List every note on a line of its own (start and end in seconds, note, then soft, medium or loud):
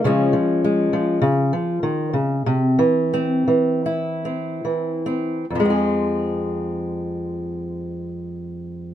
0.04 0.33 C#3 medium
0.04 0.32 F3 medium
0.04 0.63 G#3 medium
0.04 1.19 C#4 medium
0.33 0.92 F3 medium
0.64 1.22 G#3 medium
0.93 1.18 F3 medium
1.22 1.52 C#3 medium
1.53 1.82 F3 medium
1.83 2.14 D#3 medium
2.13 2.45 C#3 medium
2.46 2.79 C3 medium
2.79 3.46 E3 medium
3.14 4.24 C4 medium
3.48 4.64 E3 soft
3.86 5.44 E4 medium
4.25 5.05 C4 soft
4.65 5.44 E3 soft
5.06 5.44 C4 medium
5.50 8.94 F2 medium
5.55 8.94 F3 soft
5.60 8.94 G#3 medium
5.65 8.94 C4 soft
5.70 8.94 G#4 soft